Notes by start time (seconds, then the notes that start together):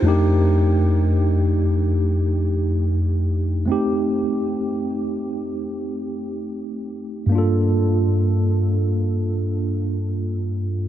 0.02 F2 A3 D4
0.07 D#4 G4
3.66 A3 C4
3.70 D#4 G4
7.26 G2 A#3
7.32 D4 F4
7.38 A4